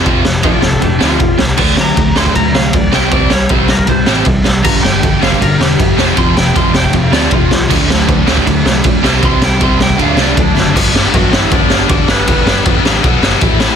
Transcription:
<<
  \new Staff \with { instrumentName = "Lead electric guitar" } { \time 4/4 \key g \major \tempo 4 = 157 r4 <f' d''>8 <a' c''>8 <d' g'>8 f'4 r8 | r8 bes''4 c'''8 bes''8 f''8 d''8 g''8 | d''8 cis''8 c''8 bes'8 c''4 r4 | bes''8 g''4 f''8 bes'8 g'4 r8 |
c'''8 g''8 c'''8 g''8 f''8 d''8 f'4 | r1 | c'''8 g''8 c'''8 g''8 f''8 d''8 d'4 | r4 <fis fis'>8 <e e'>8 <d' d''>4 <d' d''>8 <b b'>8~ |
<b b'>4 r2. | }
  \new Staff \with { instrumentName = "Distorted electric guitar" } { \clef bass \time 4/4 \key g \major r1 | r1 | r1 | <g, d g b d'>2.~ <g, d g b d'>8 <f, c f a c'>8~ |
<f, c f a c'>2. <f, c f a c'>8 r8 | <d fis a d'>2.~ <d fis a d'>8 <c g c' e'>8~ | <c g c' e'>2 <d fis a d'>2 | <g, d g b d'>8 <g, d g b d'>8 <g, d g b d'>8 <g, d g b d'>8 <g, d g b d'>8 <g, d g b d'>8 <g, d g b d'>8 <g, d g b d'>8 |
<g, d g b d'>8 <g, d g b d'>8 <g, d g b d'>8 <g, d g b d'>8 <b, fis b fis'>8 <b, fis b fis'>8 <a, e a e'>8 <a, e a e'>8 | }
  \new Staff \with { instrumentName = "Overdriven electric guitar" } { \clef bass \time 4/4 \key g \major <f, c f>8 <f, c>8 <f, c f>8 <f, c>8 <f, c>8 <f, c f>8 <f, c>8 <f, c>8 | <d fis a>8 <d fis>8 <d fis>8 <d fis a>8 <d fis>8 <d fis>8 <d fis>8 <c g c'>8 | <c g c'>8 <c g>8 <c g c'>8 <c g>8 <c g>8 <c g c'>8 <c g>8 <c g>8 | <g, d g>8 <g, d>8 <g, d>8 <g, d g>8 <g, d>8 <g, d>8 <g, d>8 <f, c f>8 |
<f, c f>8 <f, c>8 <f, c f>8 <f, c>8 <f, c>8 <f, c f>8 <f, c>8 <f, c>8 | <d fis a>8 <d fis>8 <d fis>8 <d fis a>8 <d fis>8 <d fis>8 <d fis>8 <c g c'>8 | <c g c'>8 <c g>8 <c g c'>8 <c g>8 <d fis a>8 <d fis a>8 <d fis>8 <d fis>8 | <g, d g b d'>8 <g, d g b d'>8 <g, d g b d'>8 <g, d g b d'>8 <g, d g b d'>8 <g, d g b d'>8 <g, d g b d'>8 <g, d g b d'>8 |
<g, d g b d'>8 <g, d g b d'>8 <g, d g b d'>8 <g, d g b d'>8 <b, fis b fis'>8 <b, fis b fis'>8 <a, e a e'>8 <a, e a e'>8 | }
  \new Staff \with { instrumentName = "Overdriven electric guitar" } { \clef bass \time 4/4 \key g \major <f, c f>8 <f, c>8 <f, c f>8 <f, c>8 <f, c>8 <f, c f>8 <f, c>8 <f, c>8 | <d a d'>8 <d a>8 <d a>8 <d a d'>8 <d a>8 <d a>8 <d a>8 <c g c'>8 | <c g c'>8 <c g>8 <c g c'>8 <c g>8 <c g>8 <c g c'>8 <c g>8 <c g>8 | <g, d g>8 <g, d>8 <g, d>8 <g, d g>8 <g, d>8 <g, d>8 <g, d>8 <f, c f>8 |
<f, c f>8 <f, c>8 <f, c f>8 <f, c>8 <f, c>8 <f, c f>8 <f, c>8 <f, c>8 | <d a d'>8 <d a>8 <d a>8 <d a d'>8 <d a>8 <d a>8 <d a>8 <c g c'>8 | <c g c'>8 <c g>8 <c g c'>8 <c g>8 <d a d'>8 <d a d'>8 <d a>8 <d a>8 | r1 |
r1 | }
  \new Staff \with { instrumentName = "Picked electric bass" } { \clef bass \time 4/4 \key g \major f,,8 f,,8 f,,8 f,,8 f,,8 d,8 f,,8 cis,8 | d,8 d,8 d,8 d,8 d,8 c,8 d,8 c,8 | c,8 c,8 c,8 c,8 c,8 a,,8 c,8 c,8 | g,,8 g,,8 g,,8 g,,8 g,,8 e,,8 g,,8 f,,8 |
f,,8 f,,8 f,,8 f,,8 f,,8 d,8 f,,8 c,8 | d,8 d,8 d,8 d,8 d,8 c,8 b,,8 c,8 | c,8 c,8 c,8 c,8 d,8 c,8 d,8 fis,,8 | g,,8 g,,8 g,,8 g,,8 g,,8 g,,8 g,,8 g,,8 |
g,,8 g,,8 g,,8 a,,8 b,,8 g,,8 a,,4 | }
  \new DrumStaff \with { instrumentName = "Drums" } \drummode { \time 4/4 <bd cymr>8 sn8 <bd cymr>8 sn16 bd16 <bd cymr>8 sn8 <bd cymr>8 sn8 | <cymc bd>8 sn8 <bd cymr>8 sn16 bd16 <bd cymr>8 sn8 <bd cymr>8 sn8 | <bd cymr>8 sn8 <bd cymr>8 sn16 bd16 <bd cymr>8 sn8 <bd cymr>8 sn8 | <cymc bd>8 sn8 <bd cymr>8 sn16 bd16 <bd cymr>8 sn8 <bd cymr>8 sn8 |
<bd cymr>8 sn8 <bd cymr>8 sn16 bd16 <bd cymr>8 sn8 <bd cymr>8 sn8 | <cymc bd>8 sn8 <bd cymr>8 sn16 bd16 <bd cymr>8 sn8 <bd cymr>8 sn8 | <bd cymr>8 sn8 <bd cymr>8 sn16 bd16 <bd cymr>8 sn8 <bd cymr>8 sn8 | <cymc bd>8 sn8 <bd cymr>8 sn8 <bd cymr>8 sn8 <bd cymr>8 sn8 |
<bd cymr>8 sn8 <bd cymr>8 sn8 <bd cymr>8 sn8 <bd cymr>8 sn8 | }
>>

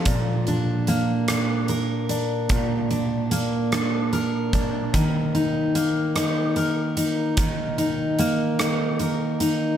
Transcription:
<<
  \new Staff \with { instrumentName = "Steel-string acoustic guitar" } { \time 6/8 \key bes \major \tempo 4. = 49 bes,8 d'8 bes8 d'8 bes'8 d'8 | bes,8 d'8 bes8 d'8 bes'8 d'8 | ees8 ees'8 bes8 ees'8 bes'8 ees'8 | ees8 ees'8 bes8 ees'8 bes'8 ees'8 | }
  \new DrumStaff \with { instrumentName = "Drums" } \drummode { \time 6/8 <hh bd>8 hh8 hh8 <hh ss>8 hh8 hh8 | <hh bd>8 hh8 hh8 <hh ss>8 hh8 <hh bd>8 | <hh bd>8 hh8 hh8 <hh ss>8 hh8 hh8 | <hh bd>8 hh8 hh8 <hh ss>8 hh8 hh8 | }
>>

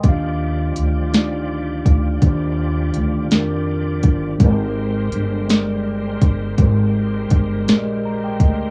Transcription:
<<
  \new Staff \with { instrumentName = "Tine electric piano" } { \time 6/8 \key ees \major \tempo 4. = 55 << { ees''16 r2 r8. | r2. | r2. | r2 bes''16 g''16 ees''8 | } \\ { <ees d' g' f''>4 r8 <d' ees' g' d''>4 r8 | <ees d' g' c''>4 r8 <ees d' g' bes'>4 r8 | <aes g' bes' ces'' c''>4 r8 <aes g' bes' d''>4 r8 | <aes g' bes' c''>4 r8 <aes g' bes' d'' ees''>4 r8 | } >> }
  \new Staff \with { instrumentName = "Tonewheel organ" } { \time 6/8 \key ees \major <f f' g' d''>2.~ | <f f' g' d''>2. | <aes bes' c''>2.~ | <aes bes' c''>2. | }
  \new Staff \with { instrumentName = "Upright bass" } { \clef bass \time 6/8 \key ees \major ees,4 d,4. d,8 | ees,4 d,8 f,4 g,,8 | aes,,4 g,,4. g,,8 | aes,,4 g,,8 bes,,4 d,8 | }
  \new DrumStaff \with { instrumentName = "Drums" } \drummode { \time 6/8 <hh bd>4 hh8 <hh sn>4 <hh bd>8 | <hh bd>4 hh8 <hh sn>4 <hh bd>8 | <hh bd>4 hh8 <hh sn>4 <hh bd>8 | <hh bd>4 <hh bd>8 <hh sn>4 <hh bd>8 | }
>>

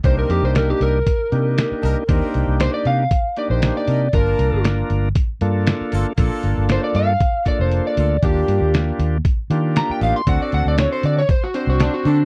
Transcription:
<<
  \new Staff \with { instrumentName = "Electric slide guitar" } { \time 4/4 \key g \minor \tempo 4 = 117 c''16 bes'16 g'16 c''16 bes'16 g'16 bes'2~ bes'8~ | bes'8 r8 c''16 d''16 f''4 d''16 c''8 d''8. | bes'4 r2. | r4 c''16 d''16 f''4 d''16 c''8 d''8. |
g'4 r2 bes''16 g''16 f''16 c'''16 | fis''16 d''16 fis''16 d''16 cis''16 c''16 d''16 cis''16 c''16 fis'16 c''16 fis'16 d'16 fis'16 d'8 | }
  \new Staff \with { instrumentName = "Horn section" } { \time 4/4 \key g \minor <c' bes'>4 r2 r8 <d' ees' bes'>16 r16 | <c' bes'>4 r2 r8 <d' ees' bes'>16 r16 | <bes f' a''>4 r2 r8 <bes f' a'>16 r16 | <bes f' a'>4 r2 r8 <bes f' a'>16 r16 |
<d' g'>4 r2 r8 <d' ees' f'>16 r16 | <c' d' fis'>4 r2 r8 <c' d' a'>16 r16 | }
  \new Staff \with { instrumentName = "Tonewheel organ" } { \time 4/4 \key g \minor <bes d' ees' g'>2 r8 <bes d' ees' g'>4. | <bes d' ees' g'>2 r8 <bes d' ees' g'>4. | <bes d' f' bes'>2 r8 <bes d' f' a'>4. | <bes d' f' a'>2 r8 <bes d' f' a'>4. |
<bes d' f' g'>2 r8 <bes d' f' g'>4. | <c' d' fis' a'>2 r8 <c' d' fis' c''>4. | }
  \new Staff \with { instrumentName = "Fingered electric bass" } { \clef bass \time 4/4 \key g \minor c,8 f,16 c,8. c,8 r8 c8. r16 c,16 r16 | ees,16 r16 c,16 c,8 r16 c8 r8. bes,,8 r16 c8 | g,,8 c,16 g,,8. g,,8 r8 g,8. r16 g,,16 r16 | bes,,16 r16 g,,16 g,,8 r16 g,8 r8. f,,8 r16 d,8 |
ees,8 g,16 ees,8. ees,8 r8 ees8. r16 a,,16 r16 | d,16 r16 d,16 d,8 r16 d8 r8. c,8 r16 d8 | }
  \new DrumStaff \with { instrumentName = "Drums" } \drummode { \time 4/4 <hh bd>8 hh8 <hh sn>8 hh8 <hh bd>8 hh8 <hh sn>8 hh8 | <hh bd>8 hh8 <hh sn>8 hh8 <hh bd>8 hh8 <hh sn>8 hh8 | <hh bd>8 hh8 <hh sn>8 hh8 <hh bd>8 hh8 <hh sn>8 hh8 | <hh bd>8 hh8 <hh sn>8 hh8 <hh bd>8 <hh bd>8 hh8 hh8 |
<hh bd>8 hh8 <hh sn>8 hh8 <hh bd>8 hh8 <hh sn>8 hh8 | <hh bd>8 hh8 <hh sn>8 hh16 sn16 <hh bd>8 hh8 <hh sn>8 hh8 | }
>>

